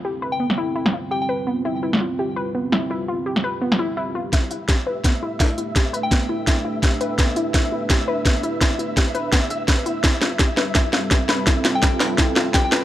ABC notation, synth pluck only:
X:1
M:4/4
L:1/8
Q:"Swing 16ths" 1/4=168
K:Ephr
V:1 name="Synth pluck"
G B B, E E F G B | B, E E F G B B, E | E F G B B, E E F | E E G B B, E E E |
G B B, E E E G B | B, E E E G B B, E | E E G B B, e B E | E F G B E F G B |
E F G B E F G B |]